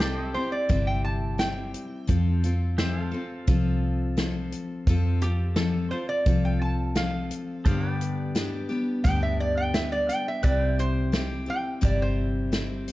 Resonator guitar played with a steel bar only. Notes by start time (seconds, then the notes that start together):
0.01 A4
0.34 C5
0.52 D5
0.87 G5
1.05 A5
1.39 G5
5.22 G4
5.56 A4
5.91 C5
6.09 D5
6.45 G5
6.62 A5
6.96 F5
9.04 G5
9.23 E5
9.40 D5
9.57 G5
9.74 E5
9.92 D5
10.09 G5
10.28 E5
10.44 D5
10.80 C5
11.50 G5
11.85 D5
12.02 C5